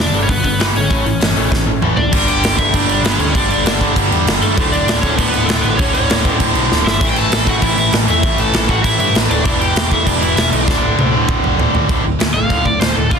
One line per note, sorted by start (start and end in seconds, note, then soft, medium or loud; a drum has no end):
0.00 0.12 G2 medium
0.00 0.12 D3 medium
0.00 0.19 D4 medium
0.00 0.21 D5 medium
0.13 0.24 G1 medium
0.13 0.28 G2 medium
0.13 0.28 D3 medium
0.13 0.28 G3 medium
0.13 open hi-hat medium
0.23 0.29 C#4 medium
0.23 0.29 C#5 medium
0.29 0.40 G1 medium
0.29 0.43 G2 medium
0.29 0.43 D3 medium
0.29 0.57 B3 medium
0.29 0.59 B4 loud
0.29 kick loud
0.29 open hi-hat medium
0.44 0.55 G1 medium
0.44 0.58 G2 medium
0.44 0.58 D3 medium
0.44 kick medium
0.44 open hi-hat medium
0.59 0.70 G1 medium
0.59 0.74 G2 medium
0.59 0.74 D3 medium
0.59 0.74 G3 medium
0.59 0.66 B3 medium
0.59 0.65 B4 medium
0.59 snare loud
0.59 open hi-hat medium
0.75 0.86 G#1 medium
0.75 0.89 G2 medium
0.75 0.89 D3 medium
0.75 1.79 C#4 medium
0.75 1.83 C#5 medium
0.75 open hi-hat medium
0.90 1.01 A1 medium
0.90 1.05 A2 medium
0.90 1.05 E3 medium
0.90 1.05 A3 loud
0.90 kick loud
0.90 open hi-hat medium
1.05 1.16 A1 medium
1.05 1.19 A2 medium
1.05 1.20 E3 medium
1.05 open hi-hat medium
1.20 1.32 G1 medium
1.20 1.34 A2 medium
1.20 1.34 E3 medium
1.20 snare loud
1.20 open hi-hat medium
1.36 1.47 A1 medium
1.36 1.50 A2 medium
1.36 1.50 E3 medium
1.36 1.51 A3 medium
1.36 open hi-hat medium
1.51 1.62 A1 medium
1.51 1.65 A2 medium
1.51 1.65 E3 medium
1.51 kick loud
1.51 snare medium
1.66 1.77 A1 medium
1.66 1.80 A2 medium
1.66 1.81 E3 medium
1.82 1.93 A1 medium
1.82 1.96 A2 medium
1.82 1.96 E3 medium
1.82 1.97 A3 medium
1.82 mid tom medium
1.96 2.08 A2 medium
1.96 2.11 A2 medium
1.96 2.12 E3 medium
1.96 2.26 D4 medium
1.96 2.29 D5 medium
1.96 floor tom medium
2.12 2.39 G1 loud
2.12 2.57 G2 medium
2.12 2.57 D3 medium
2.12 2.56 G3 medium
2.12 kick loud
2.12 crash loud
2.12 crash medium
2.27 2.57 G4 medium
2.27 2.59 G5 loud
2.27 crash medium
2.43 2.56 G1 medium
2.43 snare loud
2.43 crash loud
2.57 2.72 G1 medium
2.57 3.32 G2 medium
2.57 3.33 D3 medium
2.57 3.33 G3 medium
2.57 2.73 E4 medium
2.57 2.74 E5 loud
2.57 kick medium
2.57 crash medium
2.74 2.87 G1 medium
2.74 2.88 D4 medium
2.74 2.88 D5 loud
2.74 kick loud
2.74 crash medium
2.88 3.02 G1 loud
2.88 3.03 D4 medium
2.88 3.04 D5 medium
2.88 crash medium
3.03 3.17 G1 medium
3.03 3.19 B3 medium
3.03 3.19 B4 loud
3.03 snare loud
3.03 crash medium
3.18 3.32 D2 medium
3.18 3.34 C#4 medium
3.18 3.34 C#5 medium
3.18 crash medium
3.33 3.48 G1 medium
3.33 3.79 G2 medium
3.33 3.80 D3 medium
3.33 3.78 G3 loud
3.33 3.49 D4 medium
3.33 3.50 D5 loud
3.33 kick loud
3.33 crash medium
3.49 3.62 G1 medium
3.49 3.93 D4 medium
3.49 3.93 D5 medium
3.49 crash medium
3.65 3.78 G1 loud
3.65 snare loud
3.65 crash medium
3.79 3.94 G1 medium
3.79 4.56 G2 medium
3.79 4.56 D3 medium
3.79 4.55 G3 medium
3.79 kick medium
3.79 crash medium
3.96 4.09 G1 medium
3.96 kick loud
3.96 crash medium
4.11 4.24 E2 loud
4.11 crash medium
4.26 4.39 G1 loud
4.26 snare loud
4.26 crash medium
4.41 4.55 G2 medium
4.41 4.71 A3 medium
4.41 4.71 A4 medium
4.41 crash medium
4.56 4.83 D1 loud
4.56 5.02 D2 medium
4.56 5.02 A2 medium
4.56 5.01 D3 loud
4.56 kick loud
4.56 crash medium
4.72 5.02 D4 medium
4.72 5.01 D5 loud
4.72 crash medium
4.87 5.00 D1 loud
4.87 snare loud
4.87 crash medium
5.01 5.16 D1 loud
5.01 5.77 D2 medium
5.01 5.78 A2 medium
5.01 5.78 D3 medium
5.01 5.17 C#4 medium
5.01 5.15 C#5 loud
5.01 kick medium
5.01 crash medium
5.15 5.31 D1 loud
5.15 5.31 B3 medium
5.15 5.28 B4 loud
5.15 kick loud
5.15 crash medium
5.29 5.46 D1 medium
5.29 5.47 B3 medium
5.29 5.47 B4 medium
5.34 crash medium
5.46 5.61 D1 loud
5.46 5.63 A3 medium
5.46 5.63 A4 loud
5.46 crash medium
5.50 snare loud
5.61 5.76 A1 medium
5.61 5.78 B3 medium
5.61 5.77 B4 medium
5.61 crash medium
5.77 5.92 D1 medium
5.77 6.23 D2 medium
5.77 6.24 A2 medium
5.77 6.23 D3 loud
5.77 5.94 C#4 medium
5.77 5.92 C#5 loud
5.77 kick loud
5.77 crash medium
5.93 6.07 D1 medium
5.93 6.38 C#4 medium
5.93 6.36 C#5 loud
5.93 crash medium
6.10 6.23 D1 medium
6.10 snare loud
6.10 crash medium
6.24 6.38 D1 medium
6.24 6.99 D2 medium
6.24 6.98 A2 medium
6.24 7.00 D3 medium
6.24 kick medium
6.24 crash medium
6.40 6.53 D1 medium
6.40 kick medium
6.40 crash medium
6.55 6.68 B1 loud
6.55 crash medium
6.70 6.83 D1 loud
6.70 snare medium
6.86 6.99 G1 medium
6.86 7.08 E4 medium
6.86 7.08 E5 medium
6.86 snare loud
7.00 7.27 A1 loud
7.00 7.45 A2 medium
7.00 7.46 E3 medium
7.00 7.44 A3 medium
7.00 kick loud
7.00 crash loud
7.00 crash medium
7.09 7.16 G5 medium
7.16 7.45 A4 medium
7.16 7.49 A5 loud
7.16 crash medium
7.31 7.44 A1 medium
7.31 snare loud
7.31 crash medium
7.46 7.60 A1 medium
7.46 8.20 A2 medium
7.46 8.22 E3 medium
7.46 8.22 A3 medium
7.46 7.62 F#4 medium
7.46 7.63 F#5 loud
7.46 kick medium
7.46 crash medium
7.62 7.75 A1 medium
7.62 7.76 E4 medium
7.62 7.78 E5 loud
7.62 kick loud
7.62 crash medium
7.77 7.90 A1 medium
7.77 7.92 E4 medium
7.77 7.93 E5 loud
7.77 crash medium
7.92 8.05 A1 medium
7.92 snare loud
7.92 crash medium
8.08 8.21 E2 medium
8.08 8.37 E4 medium
8.08 8.40 E5 loud
8.08 crash medium
8.21 8.36 A1 medium
8.21 8.67 A2 medium
8.21 8.68 E3 medium
8.21 8.67 A3 medium
8.21 kick loud
8.21 crash medium
8.38 8.51 A1 medium
8.38 8.67 A4 medium
8.38 8.70 A5 medium
8.38 crash medium
8.52 8.66 A1 loud
8.52 snare loud
8.52 crash medium
8.68 8.82 A1 medium
8.68 9.43 A2 medium
8.68 9.44 E3 medium
8.68 9.44 A3 medium
8.68 8.84 F#4 medium
8.68 8.83 F#5 medium
8.68 kick medium
8.68 crash medium
8.84 8.97 A1 loud
8.84 8.98 E4 medium
8.84 8.98 E5 loud
8.84 kick loud
8.84 crash medium
8.99 9.12 G2 loud
8.99 9.14 E4 medium
8.99 9.14 E5 loud
8.99 crash medium
9.13 9.27 A1 medium
9.13 snare loud
9.13 crash medium
9.28 9.42 D1 medium
9.28 9.59 D4 medium
9.28 9.62 D5 medium
9.28 crash medium
9.44 9.71 E1 loud
9.44 9.89 E2 medium
9.44 9.90 B2 medium
9.44 9.90 E3 medium
9.44 kick loud
9.44 crash medium
9.61 9.90 G4 medium
9.61 9.92 G5 loud
9.61 crash medium
9.76 9.89 E1 medium
9.76 snare loud
9.76 crash medium
9.91 10.04 E1 medium
9.91 10.66 E2 medium
9.91 10.67 B2 medium
9.91 10.66 E3 medium
9.91 10.06 E4 medium
9.91 10.06 E5 loud
9.91 kick medium
9.91 crash medium
10.06 10.19 E1 loud
10.06 10.21 D4 medium
10.06 10.21 D5 loud
10.06 kick loud
10.06 crash medium
10.21 10.34 E1 loud
10.21 10.35 E4 medium
10.21 10.35 E5 medium
10.21 crash medium
10.36 10.50 E1 medium
10.36 10.51 E4 medium
10.36 10.50 E5 loud
10.36 snare loud
10.36 crash medium
10.50 10.65 B1 medium
10.50 11.54 D4 medium
10.50 11.58 D5 medium
10.50 crash medium
10.67 10.80 D1 medium
10.67 11.12 D2 medium
10.67 11.13 A2 medium
10.67 11.11 D3 loud
10.67 kick loud
10.67 snare medium
10.83 10.96 D1 medium
10.98 11.11 D1 medium
10.98 high tom medium
11.13 11.26 D1 medium
11.13 11.87 D2 medium
11.13 11.88 A2 medium
11.13 11.88 D3 medium
11.28 11.41 D1 loud
11.28 kick loud
11.28 mid tom loud
11.43 11.56 B1 loud
11.43 mid tom medium
11.58 11.72 D1 medium
11.58 floor tom loud
11.73 11.87 D2 medium
11.73 floor tom medium
11.89 12.03 D1 medium
11.89 12.03 D2 medium
11.89 12.03 A2 medium
11.89 12.04 D3 loud
11.89 kick loud
11.89 crash medium
12.04 12.19 D1 medium
12.04 12.18 D2 medium
12.04 12.18 A2 medium
12.20 12.33 D2 medium
12.20 12.34 D2 medium
12.20 12.34 A2 medium
12.20 snare loud
12.20 crash medium
12.34 12.49 A1 medium
12.34 12.48 D2 medium
12.34 12.48 A2 medium
12.34 12.64 F5 loud
12.49 12.64 D1 medium
12.49 12.64 D2 medium
12.49 12.64 A2 loud
12.49 12.65 D3 loud
12.49 kick loud
12.49 crash medium
12.65 12.80 D1 medium
12.65 12.79 D2 medium
12.65 12.79 A2 medium
12.65 12.80 D5 medium
12.65 kick medium
12.80 12.95 D1 medium
12.80 12.94 D2 medium
12.80 12.94 A2 medium
12.80 12.96 C5 medium
12.80 snare loud
12.80 crash medium
12.95 13.11 D1 medium
12.95 13.08 D2 medium
12.95 13.09 A2 medium
12.95 13.11 A4 medium
13.10 13.19 D1 medium
13.10 13.19 D2 medium
13.10 13.19 A2 medium
13.10 13.19 D3 loud
13.10 13.19 F4 medium
13.10 kick loud
13.10 crash medium